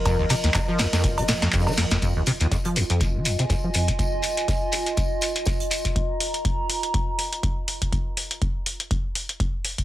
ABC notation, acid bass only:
X:1
M:4/4
L:1/16
Q:"Swing 16ths" 1/4=122
K:Fm
V:1 name="Acid bass" clef=bass
F,, E,, C, E,, F,, F, E,, F,, F,,, F, B,, F,, F,, F, F,, F,, | F,, E,, C, E,, F,, F, E,, F,, F,,, F, F,, C, F,, F, F,, F, | z16 | z16 |
z16 |]